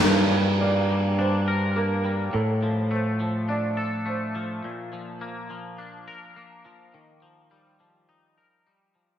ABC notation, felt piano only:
X:1
M:4/4
L:1/8
Q:1/4=104
K:Gm
V:1 name="Felt piano"
B2 d2 c2 B2 | A2 c2 d2 c2 | z8 | z8 |]